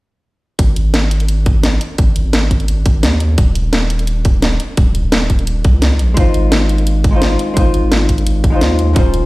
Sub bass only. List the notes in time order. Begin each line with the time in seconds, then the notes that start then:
0.59 G#1
1.99 G#1
2.25 G#1
3.03 D#2
3.38 D#1
4.78 D#1
5.04 D#1
5.65 C#2
6.00 A#1
6.17 G#1
7.57 G#1
7.83 G#1
8.61 D#2
8.96 D#1